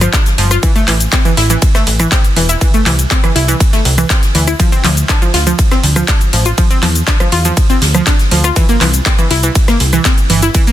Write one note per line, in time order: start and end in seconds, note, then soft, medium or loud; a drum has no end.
0.01 0.09 F3 medium
0.01 cross-stick medium
0.01 closed hi-hat soft
0.01 shaker medium
0.13 0.22 D4 medium
0.13 kick loud
0.13 snare loud
0.13 clap loud
0.13 closed hi-hat medium
0.13 shaker medium
0.26 snare medium
0.26 closed hi-hat soft
0.26 shaker soft
0.38 0.58 G1 medium
0.38 0.50 F3 medium
0.38 closed hi-hat medium
0.38 open hi-hat medium
0.51 0.56 F4 medium
0.51 cross-stick medium
0.51 closed hi-hat soft
0.51 shaker medium
0.63 0.71 E3 medium
0.63 kick loud
0.63 closed hi-hat medium
0.63 ride medium
0.63 shaker medium
0.76 0.84 A3 medium
0.76 closed hi-hat soft
0.76 shaker soft
0.88 1.07 A1 loud
0.88 0.93 E3 medium
0.88 clap medium
0.88 closed hi-hat medium
0.88 open hi-hat loud
1.00 closed hi-hat soft
1.00 shaker medium
1.12 1.21 C4 medium
1.12 kick loud
1.12 snare loud
1.12 clap loud
1.12 closed hi-hat medium
1.12 ride medium
1.12 shaker medium
1.25 1.33 E3 medium
1.25 closed hi-hat soft
1.25 shaker soft
1.37 1.57 A1 medium
1.37 1.49 E4 medium
1.37 snare medium
1.37 closed hi-hat medium
1.37 open hi-hat loud
1.50 1.58 E3 medium
1.50 closed hi-hat soft
1.50 shaker medium
1.62 kick loud
1.62 closed hi-hat medium
1.62 ride medium
1.62 shaker medium
1.75 1.83 A3 medium
1.75 cross-stick medium
1.75 snare soft
1.75 closed hi-hat soft
1.75 shaker soft
1.87 2.07 A1 medium
1.87 closed hi-hat medium
1.87 open hi-hat loud
2.00 2.08 E3 medium
2.00 cross-stick medium
2.00 closed hi-hat soft
2.00 shaker medium
2.12 2.20 C4 medium
2.12 kick loud
2.12 snare loud
2.12 clap loud
2.12 closed hi-hat medium
2.12 ride medium
2.12 shaker medium
2.24 closed hi-hat soft
2.24 shaker soft
2.36 2.56 E1 medium
2.36 2.49 E3 medium
2.36 closed hi-hat medium
2.36 open hi-hat loud
2.48 2.54 E4 medium
2.48 closed hi-hat soft
2.48 shaker medium
2.61 2.70 E3 medium
2.61 kick loud
2.61 closed hi-hat medium
2.61 ride medium
2.61 shaker medium
2.74 2.82 A3 medium
2.74 closed hi-hat soft
2.74 shaker soft
2.86 3.06 C2 loud
2.86 2.91 E3 medium
2.86 clap medium
2.86 closed hi-hat medium
2.86 open hi-hat loud
2.99 closed hi-hat soft
2.99 shaker medium
3.10 3.19 C4 medium
3.10 kick loud
3.10 snare loud
3.10 clap loud
3.10 closed hi-hat medium
3.10 ride medium
3.10 shaker medium
3.24 3.31 E3 medium
3.24 cross-stick medium
3.24 closed hi-hat soft
3.24 shaker soft
3.35 3.55 C2 medium
3.35 3.48 E4 medium
3.35 closed hi-hat medium
3.35 open hi-hat loud
3.48 3.56 E3 medium
3.48 closed hi-hat soft
3.48 shaker medium
3.60 kick loud
3.60 closed hi-hat medium
3.60 ride medium
3.60 shaker medium
3.73 3.81 A3 medium
3.73 snare soft
3.73 closed hi-hat soft
3.73 shaker soft
3.85 4.05 C2 loud
3.85 closed hi-hat medium
3.85 open hi-hat loud
3.98 4.06 E3 medium
3.98 cross-stick medium
3.98 closed hi-hat soft
3.98 shaker medium
4.10 4.18 C4 medium
4.10 kick loud
4.10 snare loud
4.10 clap loud
4.10 closed hi-hat medium
4.10 ride medium
4.10 shaker medium
4.23 snare medium
4.23 closed hi-hat soft
4.23 shaker soft
4.35 4.55 D2 loud
4.35 4.47 E3 medium
4.35 closed hi-hat medium
4.35 open hi-hat loud
4.47 4.52 E4 medium
4.47 cross-stick medium
4.47 closed hi-hat soft
4.47 shaker medium
4.59 4.68 F3 medium
4.59 kick loud
4.59 closed hi-hat medium
4.59 ride medium
4.59 shaker medium
4.72 4.80 C4 medium
4.72 closed hi-hat soft
4.72 shaker soft
4.84 5.04 D2 loud
4.84 4.89 F3 medium
4.84 clap medium
4.84 closed hi-hat medium
4.84 open hi-hat loud
4.97 closed hi-hat soft
4.97 shaker medium
5.09 5.17 D4 medium
5.09 kick loud
5.09 snare loud
5.09 clap loud
5.09 closed hi-hat medium
5.09 ride medium
5.09 shaker medium
5.22 5.30 F3 medium
5.22 closed hi-hat soft
5.22 shaker soft
5.34 5.54 D2 medium
5.34 5.46 F4 medium
5.34 snare medium
5.34 closed hi-hat medium
5.34 open hi-hat loud
5.47 5.55 F3 medium
5.47 closed hi-hat soft
5.47 shaker medium
5.58 kick loud
5.58 closed hi-hat medium
5.58 ride medium
5.58 shaker medium
5.71 5.79 C4 medium
5.71 cross-stick medium
5.71 snare soft
5.71 closed hi-hat soft
5.71 shaker soft
5.83 6.03 D2 medium
5.83 closed hi-hat medium
5.83 open hi-hat loud
5.96 6.04 F3 medium
5.96 cross-stick medium
5.96 closed hi-hat soft
5.96 shaker medium
6.08 6.17 D4 medium
6.08 kick loud
6.08 snare loud
6.08 clap loud
6.08 closed hi-hat medium
6.08 ride medium
6.08 shaker medium
6.21 closed hi-hat soft
6.21 shaker soft
6.33 6.53 A1 medium
6.33 6.45 F3 medium
6.33 closed hi-hat medium
6.33 open hi-hat loud
6.45 6.51 F4 medium
6.45 closed hi-hat soft
6.45 shaker medium
6.58 6.66 F3 medium
6.58 kick loud
6.58 closed hi-hat medium
6.58 ride medium
6.58 shaker medium
6.71 6.79 C4 medium
6.71 closed hi-hat soft
6.71 shaker soft
6.83 7.02 E2 loud
6.83 6.88 F3 medium
6.83 clap medium
6.83 closed hi-hat medium
6.83 open hi-hat loud
6.95 closed hi-hat soft
6.95 shaker medium
7.07 7.16 D4 medium
7.07 kick loud
7.07 snare loud
7.07 clap loud
7.07 closed hi-hat medium
7.07 ride medium
7.07 shaker medium
7.20 7.28 F3 medium
7.20 cross-stick medium
7.20 closed hi-hat soft
7.20 shaker soft
7.32 7.52 E2 medium
7.32 7.44 F4 medium
7.32 closed hi-hat medium
7.32 open hi-hat loud
7.45 7.53 F3 medium
7.45 closed hi-hat soft
7.45 shaker medium
7.57 kick loud
7.57 closed hi-hat medium
7.57 ride medium
7.57 shaker medium
7.70 7.78 C4 medium
7.70 closed hi-hat soft
7.70 shaker soft
7.82 8.02 D2 loud
7.82 snare loud
7.82 closed hi-hat medium
7.82 open hi-hat loud
7.95 8.03 F3 medium
7.95 cross-stick medium
7.95 closed hi-hat soft
7.95 shaker medium
8.06 8.15 D4 medium
8.06 kick loud
8.06 snare loud
8.06 clap loud
8.06 closed hi-hat medium
8.06 ride medium
8.06 shaker medium
8.19 snare medium
8.19 closed hi-hat soft
8.19 shaker soft
8.31 8.51 D2 medium
8.31 8.44 F3 medium
8.31 closed hi-hat medium
8.31 open hi-hat loud
8.44 8.49 F4 medium
8.44 cross-stick medium
8.44 closed hi-hat soft
8.44 shaker medium
8.56 8.65 E3 medium
8.56 kick loud
8.56 closed hi-hat medium
8.56 ride medium
8.56 shaker medium
8.69 8.77 A#3 medium
8.69 closed hi-hat soft
8.69 shaker soft
8.81 9.01 C2 loud
8.81 8.86 E3 medium
8.81 clap medium
8.81 closed hi-hat medium
8.81 open hi-hat loud
8.94 closed hi-hat soft
8.94 shaker medium
9.06 9.14 C4 medium
9.06 kick loud
9.06 snare loud
9.06 clap loud
9.06 closed hi-hat medium
9.06 ride medium
9.06 shaker medium
9.19 9.27 E3 medium
9.19 closed hi-hat soft
9.19 shaker soft
9.30 9.50 C2 medium
9.30 9.43 E4 medium
9.30 snare medium
9.30 closed hi-hat medium
9.30 open hi-hat loud
9.43 9.51 E3 medium
9.43 closed hi-hat soft
9.43 shaker medium
9.55 kick loud
9.55 closed hi-hat medium
9.55 ride medium
9.55 shaker medium
9.68 9.76 A#3 medium
9.68 cross-stick medium
9.68 snare soft
9.68 closed hi-hat soft
9.68 shaker soft
9.80 10.00 C2 medium
9.80 closed hi-hat medium
9.80 open hi-hat loud
9.93 10.01 E3 medium
9.93 cross-stick medium
9.93 closed hi-hat soft
9.93 shaker medium
10.05 10.13 C4 medium
10.05 kick loud
10.05 snare loud
10.05 clap loud
10.05 closed hi-hat medium
10.05 ride medium
10.05 shaker medium
10.18 closed hi-hat soft
10.18 shaker soft
10.30 10.50 G1 medium
10.30 10.42 E3 medium
10.30 closed hi-hat medium
10.30 open hi-hat loud
10.42 10.47 E4 medium
10.42 closed hi-hat soft
10.42 shaker medium
10.54 10.63 E3 medium
10.54 kick loud
10.54 closed hi-hat loud
10.54 closed hi-hat medium
10.54 ride medium
10.54 shaker medium
10.67 10.72 A#3 medium
10.67 closed hi-hat soft
10.67 shaker soft